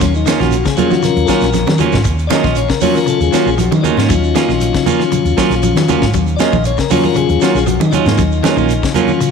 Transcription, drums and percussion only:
0.01 kick medium
0.01 snare soft
0.01 closed hi-hat medium
0.01 shekere medium
0.14 shekere soft
0.26 snare medium
0.26 closed hi-hat medium
0.26 high conga loud
0.26 shekere medium
0.39 snare soft
0.39 high conga medium
0.39 shekere soft
0.51 closed hi-hat medium
0.51 shekere medium
0.65 kick medium
0.65 snare medium
0.65 closed hi-hat soft
0.65 shekere soft
0.77 closed hi-hat medium
0.77 high conga medium
0.77 low conga medium
0.77 shekere medium
0.90 snare soft
0.90 high conga medium
0.90 shekere soft
1.03 snare soft
1.03 closed hi-hat medium
1.03 high conga medium
1.03 shekere medium
1.16 closed hi-hat soft
1.16 shekere soft
1.28 kick medium
1.28 snare medium
1.28 closed hi-hat medium
1.28 shekere medium
1.40 snare soft
1.40 closed hi-hat soft
1.40 shekere soft
1.53 snare soft
1.53 closed hi-hat medium
1.53 high conga medium
1.53 shekere medium
1.66 snare medium
1.66 high conga medium
1.66 shekere soft
1.78 closed hi-hat medium
1.78 low conga medium
1.78 shekere medium
1.92 kick medium
1.92 snare medium
1.92 low conga medium
1.92 shekere soft
2.04 kick medium
2.04 closed hi-hat medium
2.04 shekere medium
2.18 closed hi-hat soft
2.18 shekere soft
2.30 snare medium
2.30 closed hi-hat medium
2.30 high conga loud
2.30 shekere medium
2.44 kick medium
2.44 snare soft
2.44 high conga medium
2.44 shekere soft
2.55 closed hi-hat medium
2.55 shekere medium
2.69 kick medium
2.69 snare medium
2.69 shekere soft
2.81 open hi-hat medium
2.81 high conga medium
2.81 low conga medium
2.81 shekere medium
2.95 snare soft
2.95 shekere soft
3.07 closed hi-hat medium
3.07 shekere medium
3.21 closed hi-hat soft
3.21 shekere soft
3.33 snare medium
3.33 closed hi-hat medium
3.33 shekere medium
3.47 shekere soft
3.58 closed hi-hat medium
3.58 high conga medium
3.58 shekere medium
3.72 high conga medium
3.72 shekere soft
3.84 closed hi-hat medium
3.84 low conga medium
3.84 shekere medium
3.97 snare medium
3.97 high conga medium
3.97 shekere soft
4.10 kick loud
4.10 closed hi-hat medium
4.10 shekere medium
4.23 shekere soft
4.35 snare medium
4.35 closed hi-hat medium
4.35 high conga medium
4.35 shekere medium
4.49 snare soft
4.49 shekere soft
4.61 closed hi-hat medium
4.61 shekere medium
4.74 kick medium
4.74 snare medium
4.74 closed hi-hat soft
4.74 shekere soft
4.86 closed hi-hat medium
4.86 high conga medium
4.86 low conga medium
4.86 shekere medium
5.00 snare soft
5.00 shekere soft
5.12 closed hi-hat medium
5.12 high conga medium
5.12 shekere medium
5.25 closed hi-hat soft
5.25 shekere soft
5.37 kick medium
5.37 snare medium
5.37 closed hi-hat soft
5.37 shekere medium
5.51 snare soft
5.51 closed hi-hat soft
5.51 shekere soft
5.63 closed hi-hat medium
5.63 high conga medium
5.63 shekere medium
5.76 snare medium
5.76 high conga medium
5.76 shekere soft
5.88 closed hi-hat medium
5.88 low conga medium
5.88 shekere medium
6.02 kick medium
6.02 snare medium
6.02 shekere soft
6.13 kick medium
6.13 closed hi-hat medium
6.13 shekere medium
6.27 closed hi-hat soft
6.27 shekere soft
6.39 snare medium
6.39 closed hi-hat soft
6.39 high conga medium
6.39 shekere medium
6.52 kick medium
6.52 high conga medium
6.52 shekere soft
6.64 closed hi-hat medium
6.64 shekere medium
6.77 kick medium
6.77 snare medium
6.77 shekere soft
6.90 open hi-hat medium
6.90 high conga medium
6.90 low conga medium
6.90 shekere medium
7.03 high conga medium
7.03 shekere soft
7.15 closed hi-hat medium
7.15 high conga medium
7.15 shekere medium
7.29 closed hi-hat soft
7.29 shekere soft
7.41 snare medium
7.41 closed hi-hat soft
7.41 shekere medium
7.56 snare soft
7.56 shekere soft
7.67 closed hi-hat medium
7.67 high conga medium
7.67 shekere medium
7.81 high conga medium
7.81 shekere soft
7.92 closed hi-hat medium
7.92 low conga medium
7.92 shekere medium
8.05 snare medium
8.05 high conga medium
8.05 shekere soft
8.18 kick medium
8.18 closed hi-hat medium
8.18 shekere medium
8.32 shekere soft
8.44 snare medium
8.44 closed hi-hat medium
8.44 high conga loud
8.44 shekere medium
8.57 high conga medium
8.57 shekere soft
8.69 closed hi-hat medium
8.69 shekere medium
8.83 kick medium
8.83 snare medium
8.83 closed hi-hat soft
8.83 shekere soft
8.94 closed hi-hat medium
8.94 high conga medium
8.94 low conga medium
8.94 shekere medium
9.08 high conga medium
9.08 shekere soft
9.21 closed hi-hat medium
9.21 shekere medium

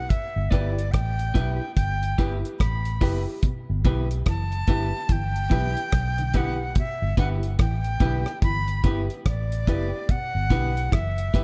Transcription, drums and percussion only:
0.10 kick loud
0.10 closed hi-hat medium
0.52 kick medium
0.52 closed hi-hat medium
0.79 closed hi-hat medium
0.94 kick medium
0.94 cross-stick loud
0.94 closed hi-hat medium
1.19 closed hi-hat soft
1.35 kick medium
1.35 closed hi-hat medium
1.77 kick loud
1.77 closed hi-hat medium
2.03 closed hi-hat medium
2.18 kick medium
2.18 closed hi-hat medium
2.45 closed hi-hat soft
2.60 kick loud
2.60 cross-stick loud
2.60 closed hi-hat medium
2.85 closed hi-hat medium
3.01 kick medium
3.01 open hi-hat medium
3.43 kick loud
3.43 closed hi-hat medium
3.85 kick medium
3.85 closed hi-hat medium
4.11 closed hi-hat medium
4.26 kick loud
4.26 cross-stick loud
4.26 closed hi-hat medium
4.52 closed hi-hat medium
4.67 kick medium
4.67 closed hi-hat medium
5.09 kick loud
5.09 closed hi-hat medium
5.36 closed hi-hat medium
5.51 kick medium
5.51 closed hi-hat medium
5.77 closed hi-hat soft
5.92 kick loud
5.92 cross-stick loud
5.92 closed hi-hat medium
6.18 closed hi-hat medium
6.34 kick medium
6.34 closed hi-hat medium
6.75 kick loud
6.75 closed hi-hat medium
7.17 kick medium
7.17 closed hi-hat medium
7.43 closed hi-hat medium
7.59 kick loud
7.59 cross-stick medium
7.59 closed hi-hat medium
7.84 closed hi-hat medium
8.00 kick medium
8.00 closed hi-hat medium
8.26 cross-stick medium
8.42 kick loud
8.42 closed hi-hat medium
8.68 closed hi-hat soft
8.84 kick medium
8.84 closed hi-hat medium
9.10 closed hi-hat soft
9.26 kick loud
9.26 cross-stick medium
9.26 closed hi-hat medium
9.52 closed hi-hat medium
9.67 kick medium
9.67 closed hi-hat medium
10.09 kick loud
10.09 closed hi-hat medium
10.50 kick medium
10.50 closed hi-hat medium
10.77 closed hi-hat medium
10.92 kick medium
10.92 cross-stick loud
10.92 closed hi-hat medium
11.18 closed hi-hat medium
11.34 kick medium
11.34 closed hi-hat medium

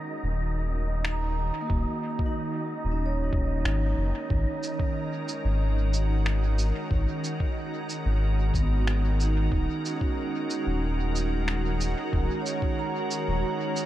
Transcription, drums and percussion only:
1.05 finger snap medium
1.70 kick loud
2.19 kick loud
3.33 kick loud
3.65 finger snap loud
4.30 kick loud
4.63 shaker soft
4.79 kick loud
5.28 shaker soft
5.94 shaker soft
6.26 finger snap medium
6.58 shaker soft
6.91 kick loud
7.24 shaker soft
7.40 kick loud
7.89 shaker soft
8.54 kick loud
8.54 shaker soft
8.87 finger snap medium
9.20 shaker soft
9.52 kick loud
9.85 shaker soft
10.01 kick loud
10.50 shaker soft
11.15 shaker medium
11.48 finger snap medium
11.81 shaker soft
12.13 kick loud
12.46 shaker medium
12.62 kick loud
13.11 shaker medium
13.76 shaker medium

